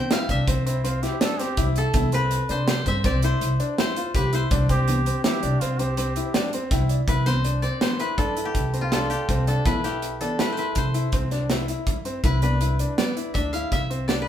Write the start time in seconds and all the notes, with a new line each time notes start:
Already playing: D5 E5 G5
0.11 E4 F5, snare, closed hi-hat
0.29 C2 D4 E5, kick, closed hi-hat
0.48 C2 C4, kick, closed hi-hat
0.66 C4 E4, closed hi-hat
0.84 C4 F4, closed hi-hat
1.03 E4 G4, snare, closed hi-hat
1.21 D4 A4, snare, closed hi-hat
1.39 C4 G4, snare, closed hi-hat
1.57 C2 E4, kick, closed hi-hat
1.76 A4, closed hi-hat
1.94 C2 E3 B3 D4 E4, kick, closed hi-hat
2.12 C4 B4, closed hi-hat
2.31 closed hi-hat
2.49 C3 D4 C5, closed hi-hat
2.68 C5, snare, closed hi-hat
2.86 G2 C4 E5, kick, closed hi-hat
3.04 C2 C4 D5, kick, closed hi-hat
3.22 E4 C5, closed hi-hat
3.41 C2, closed hi-hat
3.60 D4, closed hi-hat
3.78 E4 C5, snare, closed hi-hat
3.96 F4, closed hi-hat
4.15 C2 G4 B4, kick, closed hi-hat
4.33 E4 C5, closed hi-hat
4.51 C2 D4, kick, closed hi-hat
4.69 C4 G4, kick, closed hi-hat
4.88 E3 B3 D4, closed hi-hat
5.06 C4, closed hi-hat
5.24 E3 B3 D4 E4 G4, snare, closed hi-hat
5.43 C2 D4, closed hi-hat
5.60 C2 C4 F4, closed hi-hat
5.79 C4 G4, closed hi-hat
5.97 C4, closed hi-hat
6.16 E4, closed hi-hat
6.34 D4, snare, closed hi-hat
6.53 C4, closed hi-hat
6.71 C2 E4 G5, kick, snare, closed hi-hat
6.89 D5, closed hi-hat
7.08 C2 E4 B4, kick, closed hi-hat
7.26 E3 B3 C4 D4 C5, snare, closed hi-hat
7.44 D4, closed hi-hat
7.62 C4 D5, closed hi-hat
7.81 E3 B3 D4 C5, snare, closed hi-hat
8.00 E4 B4, closed hi-hat
8.18 G2 D4 A4, kick, closed hi-hat
8.37 E4, closed hi-hat
8.45 G4
8.55 C2, kick, closed hi-hat
8.73 C4, closed hi-hat
8.81 F4
8.92 D4 A4, snare, closed hi-hat
9.10 G4, closed hi-hat
9.29 C2 C4, kick, closed hi-hat
9.47 D4 A4, closed hi-hat
9.66 B1 E3 B3 E4 B4, kick, closed hi-hat
9.84 E4 G4, snare, closed hi-hat
10.02 closed hi-hat
10.21 E3 B3 D4 A4, closed hi-hat
10.39 E4 B4, snare, closed hi-hat
10.52 C5
10.57 E4 B4, closed hi-hat
10.75 C3 C5, kick, closed hi-hat
10.94 E4, closed hi-hat
11.12 C2 C4, kick, closed hi-hat
11.31 D4, snare, closed hi-hat
11.50 E4, snare, closed hi-hat
11.68 E4, closed hi-hat
11.87 G2, kick, closed hi-hat
12.05 C4, closed hi-hat
12.24 C2 E4 B4, kick, closed hi-hat
12.42 G3 B3 D4 B4, closed hi-hat
12.61 E4, closed hi-hat
12.79 D4, closed hi-hat
12.98 G3 B3 D4 D5, snare, closed hi-hat
13.17 E4, closed hi-hat
13.34 D2 D4 E5, kick, closed hi-hat
13.53 E4 F5, closed hi-hat
13.72 C2 E5, kick, snare, closed hi-hat
13.90 C4, closed hi-hat
14.08 D4 D5, snare, closed hi-hat
14.22 B4